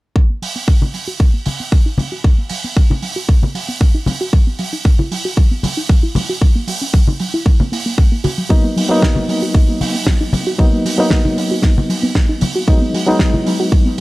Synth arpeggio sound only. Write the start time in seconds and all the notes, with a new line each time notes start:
0.16 F#3
0.30 A#3
0.42 F#3
0.56 B3
0.68 F#3
0.81 D#4
0.94 F#3
1.08 F#4
1.20 F#3
1.34 A#3
1.46 F#3
1.60 B3
1.72 F#3
1.86 D#4
1.98 F#3
2.12 F#4
2.24 F#3
2.38 A#3
2.50 F#3
2.64 B3
2.76 F#3
2.90 D#4
3.02 F#3
3.16 F#4
3.29 F#3
3.42 A#3
3.55 F#3
3.68 B3
3.80 F#3
3.94 D#4
4.07 F#3
4.21 F#4
4.33 F#3
4.47 B3
4.59 F#3
4.73 D#4
4.85 F#3
4.99 E4
5.11 F#3
5.25 F#4
5.37 F#3
5.51 B3
5.63 F#3
5.77 D#4
5.89 F#3
6.03 E4
6.15 F#3
6.29 F#4
6.42 F#3
6.55 A#3
6.67 F#3
6.81 C#4
6.94 F#3
7.08 D#4
7.20 F#3
7.34 E4
7.46 F#3
7.60 A#3
7.72 A#3
7.86 A#3
7.98 G#3
8.12 A#3
8.24 F#4
8.38 F#3
8.50 F#3
8.64 A#3
8.76 F#3
8.90 B3
9.02 F#3
9.16 D#4
9.28 F#3
9.42 F#4
9.55 F#3
9.69 A#3
9.81 F#3
9.95 B3
10.07 F#3
10.21 D#4
10.33 F#3
10.47 F#4
10.59 F#3
10.73 A#3
10.85 F#3
10.99 B3
11.11 F#3
11.25 D#4
11.37 F#3
11.51 F#4
11.63 F#3
11.77 A#3
11.89 F#3
12.03 B3
12.15 F#3
12.29 D#4
12.41 F#3
12.56 F#4
12.68 F#3
12.81 B3
12.94 F#3
13.08 D#4
13.20 F#3
13.34 E4
13.46 F#3
13.60 F#4
13.72 F#3
13.86 B3